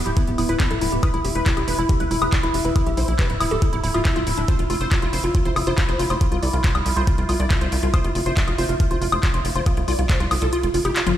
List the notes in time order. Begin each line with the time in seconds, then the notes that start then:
Already playing: E4
0.06 D1 E4 G4, closed hi-hat
0.17 B3 E4, kick, closed hi-hat
0.27 D1 B3 G4, closed hi-hat
0.38 D1 B3 E4, open hi-hat, high woodblock
0.49 D1 E4 B4, closed hi-hat
0.60 B3 G4, kick, clap, closed hi-hat
0.71 D1 E4 A4, closed hi-hat
0.81 D1 B3 E4, open hi-hat
0.92 D1 B3 G4, closed hi-hat
1.03 E4 B4, kick, closed hi-hat, high woodblock
1.14 E1 E4, closed hi-hat
1.25 E1 E4 G4, open hi-hat
1.35 E1 E4 B4, closed hi-hat
1.46 E4, kick, clap, closed hi-hat
1.57 E1 E4 G4, closed hi-hat, high woodblock
1.68 E1 E4 B4, open hi-hat
1.79 E1 E4, closed hi-hat
1.89 E4 G4, kick, closed hi-hat
2.00 E1 E4 B4, closed hi-hat
2.11 E1 E4, open hi-hat
2.22 E1 G4 B4, closed hi-hat, high woodblock
2.33 E4, kick, clap, closed hi-hat
2.43 E1 E4 B4, closed hi-hat
2.54 E1 E4 G4, open hi-hat
2.65 E1 E4 B4, closed hi-hat
2.76 E4, kick, closed hi-hat, high woodblock
2.86 B1 E4 G4, closed hi-hat
2.97 B1 E4 C5, open hi-hat
3.08 B1 E4, closed hi-hat
3.19 G4 B4, kick, clap, closed hi-hat
3.30 D1 E4, closed hi-hat
3.40 D1 E4, open hi-hat, high woodblock
3.51 D1 G4 A4, closed hi-hat
3.62 E4, kick, closed hi-hat
3.73 D1 E4, closed hi-hat
3.84 D1 E4, open hi-hat
3.94 D1 F4 E5, closed hi-hat, high woodblock
4.05 E4, kick, clap, closed hi-hat
4.16 D1 E4 F4, closed hi-hat
4.27 D1 E4, open hi-hat
4.38 D1 D4 E4, closed hi-hat
4.48 F4 C5, kick, closed hi-hat
4.59 F1 F4, closed hi-hat
4.70 F1 F4, open hi-hat
4.81 F1 F4 C5, closed hi-hat
4.91 F4, kick, clap, closed hi-hat, high woodblock
5.02 F1 F4, closed hi-hat
5.13 F1 F4 C5, open hi-hat
5.24 F1 F4, closed hi-hat
5.35 F4, kick, closed hi-hat
5.45 F1 F4 C5, closed hi-hat
5.56 F1 F4, open hi-hat, high woodblock
5.67 F1 F4 C5, closed hi-hat
5.78 F4, kick, clap, closed hi-hat
5.89 F1 F4 C5, closed hi-hat
5.99 F1 F4, open hi-hat
6.10 F1 F4 C5, closed hi-hat, high woodblock
6.21 F4, kick, closed hi-hat
6.32 C2 F4, closed hi-hat
6.43 C2 F4 D5, open hi-hat
6.53 C2 F4, closed hi-hat
6.64 F4 C5, kick, clap, closed hi-hat
6.75 C2 F4, closed hi-hat, high woodblock
6.86 C2 F4, open hi-hat
6.97 C2 F4 C5, closed hi-hat
7.07 F4, kick, closed hi-hat
7.18 C2 F4, closed hi-hat
7.29 C2 F4, open hi-hat, high woodblock
7.40 C2 F4 D5, closed hi-hat
7.50 F4, kick, clap, closed hi-hat
7.61 C2 F4 C5, closed hi-hat
7.72 C2 F4, open hi-hat
7.83 C2 F4
7.94 F4 C5, kick, closed hi-hat, high woodblock
8.04 F1 F4, closed hi-hat
8.15 F1 F4, open hi-hat
8.26 F1 F4 C5, closed hi-hat
8.37 F4, kick, clap, closed hi-hat
8.48 F1 F4, closed hi-hat, high woodblock
8.58 F1 F4 C5, open hi-hat
8.69 F1 F4, closed hi-hat
8.80 F4, kick, closed hi-hat
8.91 F1 F4 C5, closed hi-hat
9.02 F1 F4, open hi-hat
9.12 F1 F4 C5, closed hi-hat, high woodblock
9.23 F4, kick, clap, closed hi-hat
9.34 F1 F4 C5, closed hi-hat
9.45 F1 F4, open hi-hat
9.56 F1 F4 C5, closed hi-hat
9.66 F4, kick, closed hi-hat, high woodblock
9.77 C2 F4, closed hi-hat
9.88 C2 F4 D5, open hi-hat
9.99 C2 F4, closed hi-hat
10.09 F4 C5, kick, clap, closed hi-hat
10.20 C2 F4, closed hi-hat
10.31 C2 F4, open hi-hat, high woodblock
10.42 C2 F4 A4, closed hi-hat
10.53 F4, closed hi-hat
10.63 F1 F4, closed hi-hat
10.74 F1 F4, open hi-hat
10.85 F1 E4 G4, closed hi-hat, high woodblock
10.96 F4, clap, closed hi-hat
11.07 G1 F4, closed hi-hat, high tom